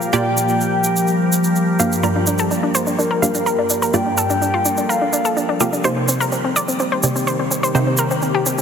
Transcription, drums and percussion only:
0, 0, Header, 1, 2, 480
1, 0, Start_track
1, 0, Key_signature, -2, "minor"
1, 0, Tempo, 476190
1, 130, Time_signature, 4, 2, 24, 8
1, 8688, End_track
2, 0, Start_track
2, 0, Title_t, "Drums"
2, 17, Note_on_c, 9, 82, 45
2, 118, Note_off_c, 9, 82, 0
2, 129, Note_on_c, 9, 82, 37
2, 230, Note_off_c, 9, 82, 0
2, 375, Note_on_c, 9, 82, 79
2, 476, Note_off_c, 9, 82, 0
2, 487, Note_on_c, 9, 82, 45
2, 588, Note_off_c, 9, 82, 0
2, 613, Note_on_c, 9, 82, 32
2, 713, Note_off_c, 9, 82, 0
2, 845, Note_on_c, 9, 82, 80
2, 946, Note_off_c, 9, 82, 0
2, 970, Note_on_c, 9, 82, 52
2, 1071, Note_off_c, 9, 82, 0
2, 1081, Note_on_c, 9, 82, 33
2, 1182, Note_off_c, 9, 82, 0
2, 1333, Note_on_c, 9, 82, 76
2, 1434, Note_off_c, 9, 82, 0
2, 1450, Note_on_c, 9, 82, 49
2, 1550, Note_off_c, 9, 82, 0
2, 1569, Note_on_c, 9, 82, 37
2, 1669, Note_off_c, 9, 82, 0
2, 1810, Note_on_c, 9, 82, 80
2, 1911, Note_off_c, 9, 82, 0
2, 1938, Note_on_c, 9, 82, 51
2, 2039, Note_off_c, 9, 82, 0
2, 2047, Note_on_c, 9, 82, 34
2, 2148, Note_off_c, 9, 82, 0
2, 2284, Note_on_c, 9, 82, 83
2, 2385, Note_off_c, 9, 82, 0
2, 2400, Note_on_c, 9, 82, 46
2, 2501, Note_off_c, 9, 82, 0
2, 2531, Note_on_c, 9, 82, 33
2, 2632, Note_off_c, 9, 82, 0
2, 2769, Note_on_c, 9, 82, 78
2, 2870, Note_off_c, 9, 82, 0
2, 2891, Note_on_c, 9, 82, 54
2, 2991, Note_off_c, 9, 82, 0
2, 3017, Note_on_c, 9, 82, 37
2, 3117, Note_off_c, 9, 82, 0
2, 3255, Note_on_c, 9, 82, 86
2, 3356, Note_off_c, 9, 82, 0
2, 3372, Note_on_c, 9, 82, 53
2, 3472, Note_off_c, 9, 82, 0
2, 3493, Note_on_c, 9, 82, 32
2, 3594, Note_off_c, 9, 82, 0
2, 3727, Note_on_c, 9, 82, 85
2, 3828, Note_off_c, 9, 82, 0
2, 3853, Note_on_c, 9, 82, 55
2, 3954, Note_off_c, 9, 82, 0
2, 3967, Note_on_c, 9, 82, 39
2, 4068, Note_off_c, 9, 82, 0
2, 4208, Note_on_c, 9, 82, 93
2, 4309, Note_off_c, 9, 82, 0
2, 4335, Note_on_c, 9, 82, 48
2, 4436, Note_off_c, 9, 82, 0
2, 4457, Note_on_c, 9, 82, 37
2, 4558, Note_off_c, 9, 82, 0
2, 4689, Note_on_c, 9, 82, 90
2, 4790, Note_off_c, 9, 82, 0
2, 4811, Note_on_c, 9, 82, 49
2, 4912, Note_off_c, 9, 82, 0
2, 4940, Note_on_c, 9, 82, 36
2, 5040, Note_off_c, 9, 82, 0
2, 5171, Note_on_c, 9, 82, 88
2, 5272, Note_off_c, 9, 82, 0
2, 5293, Note_on_c, 9, 82, 47
2, 5394, Note_off_c, 9, 82, 0
2, 5413, Note_on_c, 9, 82, 40
2, 5514, Note_off_c, 9, 82, 0
2, 5647, Note_on_c, 9, 82, 92
2, 5748, Note_off_c, 9, 82, 0
2, 5777, Note_on_c, 9, 82, 51
2, 5878, Note_off_c, 9, 82, 0
2, 5887, Note_on_c, 9, 82, 37
2, 5987, Note_off_c, 9, 82, 0
2, 6133, Note_on_c, 9, 82, 93
2, 6233, Note_off_c, 9, 82, 0
2, 6259, Note_on_c, 9, 82, 54
2, 6360, Note_off_c, 9, 82, 0
2, 6370, Note_on_c, 9, 82, 38
2, 6471, Note_off_c, 9, 82, 0
2, 6615, Note_on_c, 9, 82, 98
2, 6716, Note_off_c, 9, 82, 0
2, 6738, Note_on_c, 9, 82, 54
2, 6839, Note_off_c, 9, 82, 0
2, 6847, Note_on_c, 9, 82, 34
2, 6947, Note_off_c, 9, 82, 0
2, 7087, Note_on_c, 9, 82, 93
2, 7188, Note_off_c, 9, 82, 0
2, 7217, Note_on_c, 9, 82, 52
2, 7318, Note_off_c, 9, 82, 0
2, 7330, Note_on_c, 9, 82, 41
2, 7431, Note_off_c, 9, 82, 0
2, 7573, Note_on_c, 9, 82, 91
2, 7674, Note_off_c, 9, 82, 0
2, 7699, Note_on_c, 9, 82, 53
2, 7799, Note_off_c, 9, 82, 0
2, 7813, Note_on_c, 9, 82, 36
2, 7914, Note_off_c, 9, 82, 0
2, 8036, Note_on_c, 9, 82, 96
2, 8137, Note_off_c, 9, 82, 0
2, 8172, Note_on_c, 9, 82, 46
2, 8272, Note_off_c, 9, 82, 0
2, 8285, Note_on_c, 9, 82, 35
2, 8386, Note_off_c, 9, 82, 0
2, 8528, Note_on_c, 9, 82, 86
2, 8628, Note_off_c, 9, 82, 0
2, 8651, Note_on_c, 9, 82, 52
2, 8688, Note_off_c, 9, 82, 0
2, 8688, End_track
0, 0, End_of_file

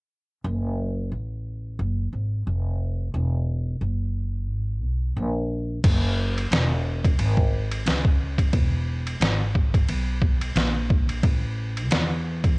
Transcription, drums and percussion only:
0, 0, Header, 1, 2, 480
1, 0, Start_track
1, 0, Tempo, 674157
1, 316, Time_signature, 4, 2, 24, 8
1, 8963, End_track
2, 0, Start_track
2, 0, Title_t, "Drums"
2, 4159, Note_on_c, 9, 36, 108
2, 4159, Note_on_c, 9, 49, 89
2, 4159, Note_on_c, 9, 51, 78
2, 4230, Note_off_c, 9, 36, 0
2, 4230, Note_off_c, 9, 49, 0
2, 4230, Note_off_c, 9, 51, 0
2, 4541, Note_on_c, 9, 51, 50
2, 4612, Note_off_c, 9, 51, 0
2, 4641, Note_on_c, 9, 44, 39
2, 4641, Note_on_c, 9, 51, 57
2, 4650, Note_on_c, 9, 38, 113
2, 4712, Note_off_c, 9, 44, 0
2, 4712, Note_off_c, 9, 51, 0
2, 4721, Note_off_c, 9, 38, 0
2, 5017, Note_on_c, 9, 36, 91
2, 5019, Note_on_c, 9, 51, 58
2, 5088, Note_off_c, 9, 36, 0
2, 5091, Note_off_c, 9, 51, 0
2, 5119, Note_on_c, 9, 51, 74
2, 5190, Note_off_c, 9, 51, 0
2, 5249, Note_on_c, 9, 36, 88
2, 5321, Note_off_c, 9, 36, 0
2, 5493, Note_on_c, 9, 51, 61
2, 5564, Note_off_c, 9, 51, 0
2, 5600, Note_on_c, 9, 44, 43
2, 5600, Note_on_c, 9, 51, 67
2, 5608, Note_on_c, 9, 38, 97
2, 5671, Note_off_c, 9, 44, 0
2, 5671, Note_off_c, 9, 51, 0
2, 5679, Note_off_c, 9, 38, 0
2, 5730, Note_on_c, 9, 36, 84
2, 5802, Note_off_c, 9, 36, 0
2, 5969, Note_on_c, 9, 36, 79
2, 5973, Note_on_c, 9, 51, 62
2, 6040, Note_off_c, 9, 36, 0
2, 6044, Note_off_c, 9, 51, 0
2, 6074, Note_on_c, 9, 51, 69
2, 6075, Note_on_c, 9, 36, 99
2, 6145, Note_off_c, 9, 51, 0
2, 6146, Note_off_c, 9, 36, 0
2, 6456, Note_on_c, 9, 51, 53
2, 6527, Note_off_c, 9, 51, 0
2, 6558, Note_on_c, 9, 44, 45
2, 6558, Note_on_c, 9, 51, 56
2, 6567, Note_on_c, 9, 38, 110
2, 6629, Note_off_c, 9, 44, 0
2, 6629, Note_off_c, 9, 51, 0
2, 6638, Note_off_c, 9, 38, 0
2, 6800, Note_on_c, 9, 36, 82
2, 6872, Note_off_c, 9, 36, 0
2, 6936, Note_on_c, 9, 36, 84
2, 6938, Note_on_c, 9, 51, 54
2, 7007, Note_off_c, 9, 36, 0
2, 7009, Note_off_c, 9, 51, 0
2, 7038, Note_on_c, 9, 51, 73
2, 7109, Note_off_c, 9, 51, 0
2, 7274, Note_on_c, 9, 36, 81
2, 7345, Note_off_c, 9, 36, 0
2, 7414, Note_on_c, 9, 51, 63
2, 7486, Note_off_c, 9, 51, 0
2, 7518, Note_on_c, 9, 44, 44
2, 7518, Note_on_c, 9, 51, 60
2, 7526, Note_on_c, 9, 38, 103
2, 7589, Note_off_c, 9, 44, 0
2, 7589, Note_off_c, 9, 51, 0
2, 7597, Note_off_c, 9, 38, 0
2, 7762, Note_on_c, 9, 36, 99
2, 7833, Note_off_c, 9, 36, 0
2, 7896, Note_on_c, 9, 51, 57
2, 7967, Note_off_c, 9, 51, 0
2, 7998, Note_on_c, 9, 36, 98
2, 7998, Note_on_c, 9, 51, 70
2, 8069, Note_off_c, 9, 36, 0
2, 8069, Note_off_c, 9, 51, 0
2, 8380, Note_on_c, 9, 51, 53
2, 8451, Note_off_c, 9, 51, 0
2, 8478, Note_on_c, 9, 44, 43
2, 8478, Note_on_c, 9, 51, 64
2, 8487, Note_on_c, 9, 38, 124
2, 8550, Note_off_c, 9, 44, 0
2, 8550, Note_off_c, 9, 51, 0
2, 8558, Note_off_c, 9, 38, 0
2, 8857, Note_on_c, 9, 36, 88
2, 8858, Note_on_c, 9, 51, 54
2, 8928, Note_off_c, 9, 36, 0
2, 8929, Note_off_c, 9, 51, 0
2, 8963, End_track
0, 0, End_of_file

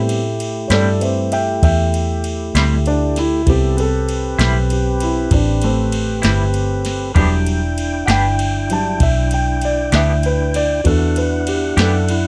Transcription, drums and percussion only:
0, 0, Header, 1, 2, 480
1, 0, Start_track
1, 0, Tempo, 615385
1, 2704, Time_signature, 12, 3, 24, 8
1, 9571, End_track
2, 0, Start_track
2, 0, Title_t, "Drums"
2, 71, Note_on_c, 9, 51, 65
2, 149, Note_off_c, 9, 51, 0
2, 313, Note_on_c, 9, 51, 61
2, 391, Note_off_c, 9, 51, 0
2, 548, Note_on_c, 9, 51, 81
2, 559, Note_on_c, 9, 38, 105
2, 626, Note_off_c, 9, 51, 0
2, 637, Note_off_c, 9, 38, 0
2, 791, Note_on_c, 9, 51, 63
2, 869, Note_off_c, 9, 51, 0
2, 1029, Note_on_c, 9, 51, 60
2, 1107, Note_off_c, 9, 51, 0
2, 1268, Note_on_c, 9, 36, 102
2, 1271, Note_on_c, 9, 51, 88
2, 1346, Note_off_c, 9, 36, 0
2, 1349, Note_off_c, 9, 51, 0
2, 1512, Note_on_c, 9, 51, 60
2, 1590, Note_off_c, 9, 51, 0
2, 1747, Note_on_c, 9, 51, 57
2, 1825, Note_off_c, 9, 51, 0
2, 1991, Note_on_c, 9, 51, 81
2, 2002, Note_on_c, 9, 38, 105
2, 2069, Note_off_c, 9, 51, 0
2, 2080, Note_off_c, 9, 38, 0
2, 2228, Note_on_c, 9, 51, 47
2, 2306, Note_off_c, 9, 51, 0
2, 2467, Note_on_c, 9, 51, 64
2, 2478, Note_on_c, 9, 38, 33
2, 2545, Note_off_c, 9, 51, 0
2, 2556, Note_off_c, 9, 38, 0
2, 2704, Note_on_c, 9, 51, 68
2, 2706, Note_on_c, 9, 36, 95
2, 2782, Note_off_c, 9, 51, 0
2, 2784, Note_off_c, 9, 36, 0
2, 2949, Note_on_c, 9, 51, 60
2, 3027, Note_off_c, 9, 51, 0
2, 3187, Note_on_c, 9, 51, 59
2, 3265, Note_off_c, 9, 51, 0
2, 3427, Note_on_c, 9, 51, 76
2, 3438, Note_on_c, 9, 38, 98
2, 3505, Note_off_c, 9, 51, 0
2, 3516, Note_off_c, 9, 38, 0
2, 3668, Note_on_c, 9, 51, 61
2, 3746, Note_off_c, 9, 51, 0
2, 3903, Note_on_c, 9, 51, 63
2, 3981, Note_off_c, 9, 51, 0
2, 4142, Note_on_c, 9, 36, 106
2, 4142, Note_on_c, 9, 51, 82
2, 4220, Note_off_c, 9, 36, 0
2, 4220, Note_off_c, 9, 51, 0
2, 4380, Note_on_c, 9, 51, 65
2, 4458, Note_off_c, 9, 51, 0
2, 4620, Note_on_c, 9, 51, 65
2, 4698, Note_off_c, 9, 51, 0
2, 4861, Note_on_c, 9, 51, 85
2, 4872, Note_on_c, 9, 38, 97
2, 4939, Note_off_c, 9, 51, 0
2, 4950, Note_off_c, 9, 38, 0
2, 5100, Note_on_c, 9, 51, 55
2, 5178, Note_off_c, 9, 51, 0
2, 5341, Note_on_c, 9, 51, 70
2, 5352, Note_on_c, 9, 38, 37
2, 5419, Note_off_c, 9, 51, 0
2, 5430, Note_off_c, 9, 38, 0
2, 5581, Note_on_c, 9, 36, 94
2, 5583, Note_on_c, 9, 51, 76
2, 5659, Note_off_c, 9, 36, 0
2, 5661, Note_off_c, 9, 51, 0
2, 5822, Note_on_c, 9, 51, 61
2, 5900, Note_off_c, 9, 51, 0
2, 6066, Note_on_c, 9, 51, 63
2, 6144, Note_off_c, 9, 51, 0
2, 6304, Note_on_c, 9, 51, 85
2, 6315, Note_on_c, 9, 38, 91
2, 6382, Note_off_c, 9, 51, 0
2, 6393, Note_off_c, 9, 38, 0
2, 6544, Note_on_c, 9, 51, 65
2, 6622, Note_off_c, 9, 51, 0
2, 6785, Note_on_c, 9, 51, 62
2, 6863, Note_off_c, 9, 51, 0
2, 7020, Note_on_c, 9, 51, 84
2, 7022, Note_on_c, 9, 36, 105
2, 7098, Note_off_c, 9, 51, 0
2, 7100, Note_off_c, 9, 36, 0
2, 7261, Note_on_c, 9, 51, 63
2, 7339, Note_off_c, 9, 51, 0
2, 7500, Note_on_c, 9, 51, 55
2, 7578, Note_off_c, 9, 51, 0
2, 7739, Note_on_c, 9, 51, 71
2, 7750, Note_on_c, 9, 38, 100
2, 7817, Note_off_c, 9, 51, 0
2, 7828, Note_off_c, 9, 38, 0
2, 7982, Note_on_c, 9, 51, 53
2, 8060, Note_off_c, 9, 51, 0
2, 8223, Note_on_c, 9, 51, 69
2, 8301, Note_off_c, 9, 51, 0
2, 8462, Note_on_c, 9, 51, 76
2, 8464, Note_on_c, 9, 36, 88
2, 8540, Note_off_c, 9, 51, 0
2, 8542, Note_off_c, 9, 36, 0
2, 8706, Note_on_c, 9, 51, 61
2, 8784, Note_off_c, 9, 51, 0
2, 8945, Note_on_c, 9, 51, 66
2, 9023, Note_off_c, 9, 51, 0
2, 9186, Note_on_c, 9, 51, 86
2, 9196, Note_on_c, 9, 38, 101
2, 9264, Note_off_c, 9, 51, 0
2, 9274, Note_off_c, 9, 38, 0
2, 9426, Note_on_c, 9, 51, 67
2, 9504, Note_off_c, 9, 51, 0
2, 9571, End_track
0, 0, End_of_file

